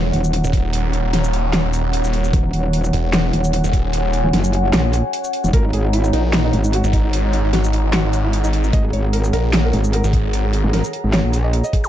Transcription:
Already playing: detuned saw bass E1, ambient pad C#5 F#5 A#5
0.13 wobble bass D#1, closed hi-hat
0.24 shaker
0.33 closed hi-hat
0.44 detuned saw bass D#1, shaker
0.53 kick, closed hi-hat
0.73 closed hi-hat
0.93 closed hi-hat
1.04 detuned saw bass D#1
1.13 snare, closed hi-hat
1.24 shaker
1.33 closed hi-hat
1.53 snare, clap, closed hi-hat
1.64 detuned saw bass D#1
1.73 closed hi-hat, shaker
1.93 closed hi-hat
2.04 detuned saw bass D#1, shaker
2.13 closed hi-hat
2.24 shaker
2.33 wobble bass D#1, kick, closed hi-hat
2.53 wobble bass D#1, closed hi-hat
2.73 closed hi-hat
2.84 ambient pad G#5, shaker
2.93 detuned saw bass E1, closed hi-hat
3.13 snare, clap, closed hi-hat
3.33 wobble bass D#1, closed hi-hat
3.44 shaker
3.53 closed hi-hat
3.64 detuned saw bass D#1, shaker
3.73 kick, closed hi-hat
3.93 closed hi-hat
4.13 closed hi-hat
4.24 wobble bass D#1
4.33 wobble bass F#1, snare, closed hi-hat
4.44 shaker
4.53 closed hi-hat
4.73 wobble bass A#1, snare, clap, closed hi-hat
4.93 closed hi-hat, shaker
5.13 closed hi-hat
5.24 shaker
5.33 closed hi-hat
5.44 wobble bass E1, shaker
5.53 wobble bass G#1, felt piano A#4, kick, closed hi-hat
5.64 felt piano D#4
5.73 wobble bass G#1, felt piano G#4, closed hi-hat
5.84 felt piano D#4
5.93 felt piano E4, closed hi-hat
6.04 felt piano D#4, shaker
6.13 detuned saw bass A#1, felt piano D#4, closed hi-hat
6.24 felt piano D#4, ambient pad A#5
6.33 felt piano D#4, snare, clap, closed hi-hat
6.44 felt piano D#4
6.53 wobble bass G#1, felt piano D#4, closed hi-hat
6.64 felt piano D#4, shaker
6.73 felt piano F#4, closed hi-hat
6.84 detuned saw bass G#1, felt piano D#4, shaker
6.93 felt piano D#4, kick, closed hi-hat
7.04 felt piano D#4
7.13 closed hi-hat
7.24 felt piano D#4
7.33 felt piano D#4, closed hi-hat
7.44 detuned saw bass G#1, felt piano D#4
7.53 felt piano F#4, snare, closed hi-hat
7.64 felt piano D#4, shaker
7.73 felt piano D#4, closed hi-hat
7.84 felt piano D#4
7.93 felt piano F#4, snare, clap, closed hi-hat
8.04 detuned saw bass G#1, felt piano D#4
8.13 felt piano D#4, closed hi-hat, shaker
8.24 felt piano E4
8.33 felt piano D#4, closed hi-hat
8.44 detuned saw bass G#1, felt piano D#4, shaker
8.53 felt piano D#4, closed hi-hat
8.64 felt piano D#4, shaker
8.73 wobble bass G#1, felt piano D#5, kick, closed hi-hat
8.84 felt piano G#4
8.93 wobble bass G#1, felt piano C#5, closed hi-hat
9.04 felt piano G#4
9.13 felt piano A#4, closed hi-hat
9.24 felt piano G#4, shaker
9.33 detuned saw bass A#1, felt piano A#4, closed hi-hat
9.44 felt piano G#4
9.53 felt piano G#4, snare, clap, closed hi-hat
9.64 felt piano A#4
9.73 wobble bass G#1, felt piano G#4, closed hi-hat
9.84 felt piano G#4, shaker
9.93 felt piano A#4, closed hi-hat
10.04 detuned saw bass G#1, felt piano G#4, shaker
10.13 felt piano G#4, kick, closed hi-hat
10.24 felt piano G#4
10.33 closed hi-hat
10.44 felt piano G#4
10.53 felt piano G#4, closed hi-hat
10.64 wobble bass G#1, felt piano G#4
10.73 felt piano A#4, snare, closed hi-hat
10.84 felt piano G#4, shaker
10.93 felt piano G#4, closed hi-hat
11.04 wobble bass G#1, felt piano G#4
11.13 felt piano C#5, snare, clap, closed hi-hat
11.24 wobble bass A#1, felt piano G#4
11.33 felt piano G#4, closed hi-hat, shaker
11.44 felt piano D#5
11.53 felt piano G#4, closed hi-hat
11.64 felt piano D#5, shaker
11.73 felt piano G#4, kick, closed hi-hat
11.84 felt piano G#4, zap, shaker

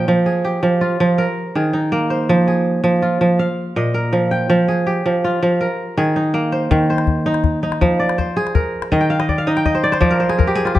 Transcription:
Already playing: kora A#2 F4 A#4 D#5 G5
0.08 kora F3
0.26 kora G#4
0.45 kora G4
0.63 kora F3
0.81 kora F4
1.00 kora F3
1.18 kora A#4
1.55 kora D#3 G#4
1.73 kora D#4
1.92 kora A#3
2.10 kora C5
2.29 kora F3
2.48 kora G#4
2.84 kora F3
3.02 kora F4
3.21 kora F3
3.39 kora F5
3.76 kora A#2 D#5
3.94 kora A#4
4.13 kora F3
4.31 kora G5
4.50 kora F3
4.68 kora G#4
4.87 kora G4
5.06 kora F3
5.24 kora F4
5.43 kora F3
5.61 kora A#4
5.97 kora D#3 G#4
6.16 kora D#4
6.34 kora A#3
6.52 kora C5
6.71 kora D#3, calabash thump
6.90 kora C5
6.98 calabash click
7.07 calabash thump
7.26 kora D#4
7.34 calabash click
7.44 calabash thump, calabash click
7.63 kora D#4, calabash click
7.72 calabash click
7.81 kora F3, calabash thump
8.00 kora D5
8.09 calabash click
8.18 kora C5, calabash thump
8.37 kora G#4
8.47 calabash click
8.55 kora A#4, calabash thump
8.82 calabash click
8.92 kora D#3 D#5, calabash thump
9.01 kora G5
9.10 kora F5
9.20 kora D#5, calabash click
9.29 kora D5, calabash thump
9.38 kora F5
9.47 kora D#4 D#5
9.57 kora G5, calabash click
9.65 kora D#5, calabash thump, calabash click
9.75 kora C5
9.84 kora D5, calabash click
9.92 kora C5, calabash click
10.01 kora F3 D5, calabash thump
10.10 kora A#4
10.20 kora C5
10.29 kora G#4, calabash click
10.38 kora A#4, calabash thump
10.47 kora G4
10.55 kora G#4
10.65 kora F4, calabash click
10.75 kora G4, calabash thump

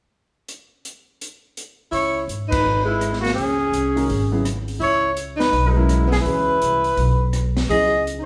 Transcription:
0.48 closed hi-hat
0.85 closed hi-hat
1.21 closed hi-hat
1.57 closed hi-hat
1.92 upright bass C#2, tenor saxophone E4, trumpet C#5, open hi-hat
2.28 upright bass G#2, closed hi-hat
2.48 tenor saxophone D#4, trumpet B4, kick, ride
2.63 upright bass G#1
2.84 tenor saxophone G#3, trumpet E4
3.01 cross-stick, closed hi-hat
3.13 snare
3.21 tenor saxophone A#3, trumpet F#4, open hi-hat
3.26 snare
3.34 upright bass C#2, tenor saxophone C#4, trumpet G#4, open hi-hat
3.72 upright bass C2, closed hi-hat
3.96 grand piano D#3 G#3 C#4 F#4 A#4, open hi-hat
4.09 upright bass G#1, open hi-hat
4.31 grand piano C#3 F#3 B3 E4 G#4
4.45 cross-stick, closed hi-hat
4.68 open hi-hat
4.80 upright bass C#2, tenor saxophone E4, trumpet C#5, open hi-hat
5.17 closed hi-hat
5.37 tenor saxophone D#4, trumpet B4, snare, open hi-hat
5.52 upright bass B1, open hi-hat
5.66 tenor saxophone F#3, trumpet D#4
5.72 grand piano C#3, tenor saxophone G#3
5.76 grand piano F#3 B3 E4 A#4, trumpet E4
5.89 cross-stick, closed hi-hat
6.07 tenor saxophone B3
6.12 trumpet G#4, snare, open hi-hat
6.21 upright bass C#2, grand piano E3 G#3 C#4 F#4, tenor saxophone E4, trumpet B4
6.26 grand piano B4, open hi-hat
6.62 upright bass C2, closed hi-hat
6.84 open hi-hat
6.97 upright bass B1, open hi-hat
7.33 cross-stick, closed hi-hat
7.57 snare, open hi-hat
7.69 upright bass C#2, grand piano C#3 F#3 B3 E4 G#4, tenor saxophone G#4, trumpet D#5, open hi-hat
8.07 closed hi-hat
8.19 tenor saxophone D#4

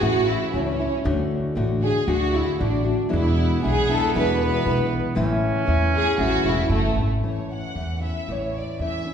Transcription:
0.01 upright bass A1, nylon-string guitar A2 E3 A3 C#4 E4, violin section F#4
0.28 violin section E4
0.54 upright bass C#2, nylon-string guitar E3 A3 C#4 E4, violin section C#4
0.60 violin section D4
0.68 violin section C#4
0.80 nylon-string guitar A3 C#4 E4
1.04 upright bass D2, nylon-string guitar D3 A3 D4 F#4
1.55 upright bass A1, nylon-string guitar D3 A3 D4 F#4
1.82 nylon-string guitar A3 D4 F#4, violin section G#4
2.07 upright bass D2, nylon-string guitar D3 A3 D4 F#4, violin section F#4
2.35 violin section E4
2.59 upright bass A1, nylon-string guitar D3 A3 D4 F#4, violin section D4
2.84 nylon-string guitar A3 D4 F#4
3.09 nylon-string guitar E2 B2 E3 G#3 D4 E4, violin section E4
3.13 upright bass E2, trumpet B3
3.62 upright bass B1, nylon-string guitar E3 G#3 D4 E4, violin section G#4
3.89 nylon-string guitar E3 G#3 D4 E4, violin section A4
4.14 nylon-string guitar E2 B2 E3 G#3 D4 E4, upright bass E2, violin section B4
4.43 violin section B4
4.64 upright bass B1, nylon-string guitar E3 G#3 D4 E4
5.15 upright bass A1, nylon-string guitar A2 E3 A3 C#4 E4, trumpet C#4
5.67 upright bass E2, nylon-string guitar E3 A3 C#4 E4
5.93 nylon-string guitar A3 C#4 E4, violin section G#4
6.18 upright bass A1, nylon-string guitar A2 E3 A3 C#4 E4, violin section F#4
6.44 upright bass E1, violin section E4
6.69 upright bass F#1, nylon-string guitar E3 A3 C#4 E4, violin section A3
6.96 upright bass G#1, nylon-string guitar A3 C#4 E4
7.20 upright bass A1, nylon-string guitar A2 E3 A3 C#4 E4
7.27 violin section C#5
7.54 violin section F#5
7.75 upright bass E2, nylon-string guitar E3 A3 C#4 E4
8.01 nylon-string guitar A3 C#4 E4, violin section E5
8.28 upright bass A1, nylon-string guitar A2 E3 A3 C#4 E4, violin section C#5
8.57 violin section D5
8.79 upright bass E2, nylon-string guitar E3 A3 C#4 E4, violin section E5
9.06 nylon-string guitar A3 C#4 E4

